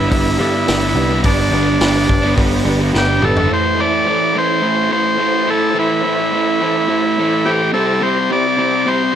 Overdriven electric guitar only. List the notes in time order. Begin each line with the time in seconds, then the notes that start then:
Already playing: G2 B3 D4
0.00 G3
0.38 D3 G3 B3 D4
0.67 G2 D3 G3 B3 D4
0.82 G3 B3 D4
0.95 D3 G3 B3 D4
1.10 G3 B3 D4
1.24 G2 D3 G3 B3 D4
1.38 G3 B3 D4
1.51 D3 G3 B3 D4
1.80 G2 D3 G3 B3 D4
1.94 G3 B3 D4
2.09 muted overdriven electric guitar stroke
2.22 G3 B3 D4
2.64 D3 G3 B3 D4
2.92 G2 D3 G3 B3 D4
3.06 G3 B3 D4
3.20 D3 G3 B3 D4
3.36 G3 B3 D4
3.49 A2 E3 A3
3.78 A2 E3 A3
4.06 A2 E3 A3
4.34 A2 E3 A3
4.62 A2 E3 A3
4.90 A2 E3 A3
5.18 A2 E3 A3
5.47 A2 E3 A3
5.74 A2 E3 A3
6.03 A2 E3 A3
6.32 A2 E3 A3
6.61 A2 E3 A3
6.88 A2 E3 A3
7.18 A2 E3 A3
7.45 A2 E3 A3
7.73 C3 G3 C4
8.01 C3 G3 C4
8.31 C3 G3 C4
8.57 C3 G3 C4
8.86 C3 G3 C4